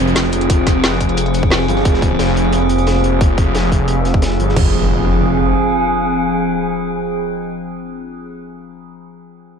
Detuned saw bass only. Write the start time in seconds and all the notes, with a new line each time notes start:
Already playing: F1
0.33 F1
0.84 F1
1.68 G1
1.85 F1
2.19 F1
3.04 F1
3.55 F1
4.40 G1
4.56 F1